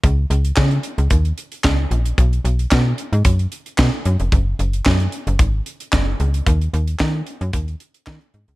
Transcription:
<<
  \new Staff \with { instrumentName = "FM bass" } { \clef bass \time 4/4 \key ges \major \tempo 4 = 112 des,8 des,8 des8 r16 des,16 ees,8 r8 des,8 bes,,8 | b,,8 b,,8 b,8 r16 aes,16 fis,8 r8 b,16 r16 fis,16 f,,16 | ges,,8 ges,,8 ges,8 r16 ges,,16 aes,,8 r8 ges,,8 des,8 | ees,8 ees,8 ees8 r16 ges,16 ees,8 r8 ees16 r16 aes,16 des,16 | }
  \new DrumStaff \with { instrumentName = "Drums" } \drummode { \time 4/4 <hh bd>8 hh16 hh16 <hc bd sn>16 hh16 hh16 hh16 <hh bd>16 hh16 hh16 hh16 <hc bd sn>8 hh16 hh16 | <hh bd>16 hh16 hh16 hh16 <hc bd sn>8 hh16 hh16 <hh bd>16 hh16 hh16 hh16 <hc bd sn>8 hh16 hh16 | <hh bd>8 hh16 hh16 <hc bd sn>16 hh16 hh16 hh16 <hh bd>8 hh16 hh16 <hc bd sn>8 hh16 hh16 | <hh bd>16 hh16 hh16 hh16 <hc bd sn>8 hh16 hh16 <hh bd>16 hh16 hh16 hh16 <hc bd sn>16 hh16 hh16 hh16 | }
>>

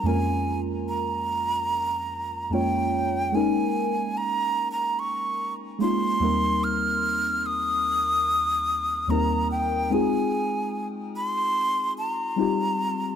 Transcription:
<<
  \new Staff \with { instrumentName = "Flute" } { \time 4/4 \key bes \dorian \tempo 4 = 73 aes''8 r8 bes''2 g''4 | aes''4 \tuplet 3/2 { bes''4 bes''8 } des'''8 r8 c'''4 | f'''4 ees'''2 bes''8 g''8 | aes''4 r8 c'''4 bes''4. | }
  \new Staff \with { instrumentName = "Synth keys" } { \time 4/4 \key bes \dorian <f, aes bes des' f' bes'>4 r2 <f, aes bes des' f' des''>8 r8 | <aes bes des' ees' bes'>4 r2 <aes bes des' ees' f'>8 <ees, g bes c' ees' bes'>8~ | <ees, g bes c' ees' bes'>4 r2 <ees, g bes c' ees' bes'>8 r8 | <aes c' ees' f' aes'>4 r2 <g c' ees' f' g'>8 r8 | }
>>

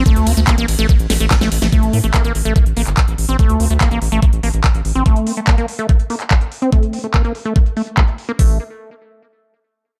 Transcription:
<<
  \new Staff \with { instrumentName = "Acid bass" } { \time 4/4 \key g \dorian \tempo 4 = 144 a8 bes16 a16 bes16 bes16 r16 a16 r8 a16 a16 bes16 a16 r16 a16 | a8 bes16 a16 bes16 bes16 r16 a16 r8 bes16 r4 c'16 | a8 bes16 a16 bes16 bes16 r16 a16 r8 bes16 r4 c'16 | a8 bes16 a16 bes16 bes16 r16 a16 a16 r16 bes16 r4 c'16 |
a8 bes16 a16 bes16 bes16 r16 a16 a16 r16 a16 r16 a16 r8 bes16 | a8 r2. r8 | }
  \new Staff \with { instrumentName = "Analog synth bass" } { \clef bass \time 4/4 \key g \dorian r16 d,16 d,16 d,16 r16 a,,16 a,,16 a,,16 r16 a,,16 a,,16 a,,16 r16 a,,16 a,,16 a,,16 | r16 a,,16 a,16 a,,16 r16 a,,16 a,,16 a,,16 r16 a,,16 a,,16 g,,16 r16 a,,16 a,,16 a,,16 | r16 d,16 d,16 d,16 r16 a,,16 a,,16 a,,16 r16 a,,16 a,,16 a,,16 r16 a,,16 a,,16 a,,16 | r1 |
r1 | a,,8 r2. r8 | }
  \new DrumStaff \with { instrumentName = "Drums" } \drummode { \time 4/4 <hh bd>16 hh16 <hho cymr>16 hh16 <hc hh bd>16 hh16 <hho cymr>16 hh16 <hh bd>16 hh16 <hho cymr sn>16 hh16 <hc hh bd sn>16 <hh sn>16 <hho cymr>16 <hh sn>16 | <hh bd>16 hh16 hho16 hh16 <hc hh bd>16 hh16 hho16 hh16 <hh bd>16 hh16 hho16 <hc hh>16 <hc hh bd>16 hh16 hho16 hh16 | <hh bd>16 hh16 hho16 hh16 <hc hh bd>16 hh16 hho16 hh16 <hh bd>16 hh16 hho16 hh16 <hc hh bd>16 hh16 hho16 hh16 | <hh bd>16 hh16 hho16 hh16 <hc hh bd>16 hh16 hho16 hh16 <hh bd>16 hh16 hho16 <hc hh>16 <hc hh bd>16 hh16 hho16 hh16 |
<hh bd>16 hh16 hho16 hh16 <hc hh bd>16 hh16 hho16 hh16 <hh bd>16 hh16 hho16 hh16 <hc hh bd>16 hh16 hho16 hh16 | <hho bd>4 r4 r4 r4 | }
>>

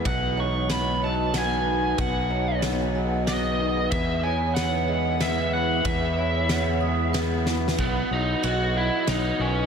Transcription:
<<
  \new Staff \with { instrumentName = "Lead electric guitar" } { \time 3/4 \key b \mixolydian \tempo 4 = 93 fis''8 cis'''8 b''8 a''8 gis''4 | fis''4 r4 dis''4 | e''8 gis''8 fis''4 e''8 fis''8 | e''2 r4 |
b8 dis'8 fis'8 e'8 dis'8 cis'8 | }
  \new Staff \with { instrumentName = "Vibraphone" } { \time 3/4 \key b \mixolydian b'8 cis''4 dis''8 b'4 | b'8 cis''4 dis''8 b'4 | b'8 cis''4 dis''8 b'4 | b'8 cis''4 dis'''8 b'4 |
fis''4 dis''8 dis''4 b'8 | }
  \new Staff \with { instrumentName = "Ambient pad" } { \time 3/4 \key b \mixolydian << { dis'2.~ | dis'2. | <e e' b''>2.~ | <e e' b''>2. |
<fis' dis''>2. | } \\ { <fis' b'>2. | gis'2.~ | gis'2.~ | gis'2. |
b'2. | } >> }
  \new Staff \with { instrumentName = "Clean electric guitar" } { \clef bass \time 3/4 \key b \mixolydian b,8 dis'8 b8 fis8 b8 dis8 | b,8 dis'8 b8 fis8 b8 dis8 | e8 e'8 b8 gis8 b8 e8 | e8 e'8 b8 gis8 b8 e8 |
b,8 fis8 b4 fis8 dis8 | }
  \new Staff \with { instrumentName = "Fingered electric bass" } { \clef bass \time 3/4 \key b \mixolydian b,,2. | b,,2. | e,2. | e,2. |
b,,8 b,,8 b,,4 b,,8 b,,8 | }
  \new DrumStaff \with { instrumentName = "Drums" } \drummode { \time 3/4 <bd cymr>4 <cymr sn>4 <cymr sn>4 | <bd cymr>4 <cymr sn>4 <cymr sn>4 | <bd cymr>4 <cymr sn>4 <cymr sn>4 | <bd cymr>4 <cymr sn>4 \tuplet 3/2 { <cymr sn>16 r16 r16 sn16 r16 sn16 } |
<bd cymr>4 cymr4 <cymr sn>4 | }
>>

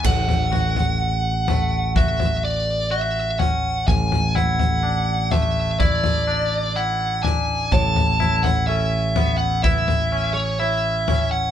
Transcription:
<<
  \new Staff \with { instrumentName = "Lead electric guitar" } { \time 4/4 \key fis \minor \tempo 4 = 62 fis''2 e''8 d''8 e''8 fis''8 | gis''8 fis''4 e''8 d''4 fis''8 gis''8 | a''8. fis''16 e''8. fis''16 e''8. cis''16 e''8. fis''16 | }
  \new Staff \with { instrumentName = "Felt piano" } { \time 4/4 \key fis \minor r1 | r1 | cis''4 a'4 b'4 cis''4 | }
  \new Staff \with { instrumentName = "Clean electric guitar" } { \time 4/4 \key fis \minor a,8 fis'4 a8 fis'4 fis'8 cis'8 | a,8 e'8 d'8 a8 e'8 d'8 e'8 d'8 | a,8 e'8 cis'8 b8 e'8 cis'8 e'8 cis'8 | }
  \new Staff \with { instrumentName = "Picked electric bass" } { \clef bass \time 4/4 \key fis \minor a,,1 | a,,1 | a,,1 | }
  \new DrumStaff \with { instrumentName = "Drums" } \drummode { \time 4/4 <cymc bd tomfh>16 tomfh16 tomfh16 tomfh16 r8 tomfh8 <bd tomfh>16 tomfh8. r8 tomfh8 | <bd tomfh>16 tomfh16 tomfh16 tomfh16 r8 tomfh8 <bd tomfh>16 tomfh8. r8 tomfh8 | <bd tomfh>16 tomfh16 tomfh16 tomfh16 r8 tomfh8 <bd tomfh>16 tomfh8. r8 tomfh8 | }
>>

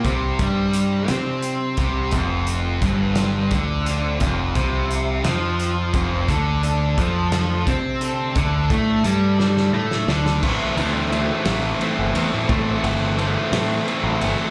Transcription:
<<
  \new Staff \with { instrumentName = "Overdriven electric guitar" } { \time 6/8 \key a \minor \tempo 4. = 58 <g c' g' c''>8 <g c' g' c''>8 <g c' g' c''>8 <g c' g' c''>8 r8 <g c' g' c''>8 | <c' f' c''>8 <c' f' c''>8 <c' f' c''>8 <c' f' c''>8 r8 <c' f' c''>8 | <c' f' c''>8 <c' f' c''>8 <c' f' c''>8 <c' f' c''>8 r8 <c' f' c''>8 | <a d' a'>8 <a d' a'>8 <a d' a'>8 <a d' a'>8 r8 <a d' a'>8 |
<a d' a'>8 <a d' a'>8 <a d' a'>8 <a d' a'>8 r8 <a d' a'>8 | <e a c'>8 <e a c'>8 <e a c'>8 <e a c'>8 <e a c'>8 <e a c'>8 | <e a c'>8 <e a c'>8 <e a c'>8 <e a c'>8 <e a c'>8 <e a c'>8 | }
  \new Staff \with { instrumentName = "Distorted electric guitar" } { \time 6/8 \key a \minor c8 g4 c'4 c8 | f,4 g,4 d4 | f,8 c4 f4 f,8 | d4 f4 c'4 |
d8 a8 g4 a8 d8 | <e a c'>8 <e a c'>8 <e a c'>8 <e a c'>8 <e a c'>8 <e a c'>8 | <e a c'>8 <e a c'>8 <e a c'>8 <e a c'>8 <e a c'>8 <e a c'>8 | }
  \new Staff \with { instrumentName = "Picked electric bass" } { \clef bass \time 6/8 \key a \minor c,8 g,4 c4 c,8 | f,,4 g,,4 d,4 | f,,8 c,4 f,4 f,,8 | d,4 f,4 c4 |
d,8 a,8 g,4 a,8 d,8 | a,,16 r16 d,4 a,,8 r16 g,,16 e,16 a,16 | a,8 g,,4 a,8 r16 a,,16 g,,16 r16 | }
  \new DrumStaff \with { instrumentName = "Drums" } \drummode { \time 6/8 <hh bd>8 <hh bd>8 hh8 <hh sn>8 hh8 <hh bd>8 | <hh bd>8 hh8 <hh bd>8 <hh sn>8 <hh bd>8 hh8 | <hh bd>8 <hh bd>8 hh8 <hh sn>8 hh8 <hh bd>8 | <hh bd>8 hh8 <hh bd>8 <hh sn>8 <hh bd>8 hh8 |
<hh bd>8 <hh bd>8 hh8 sn16 sn8 sn16 sn16 sn16 | <cymc bd>8 cymr8 cymr8 <cymr sn>8 cymr8 cymr8 | <bd cymr>8 cymr8 cymr8 <cymr sn>8 cymr8 cymr8 | }
>>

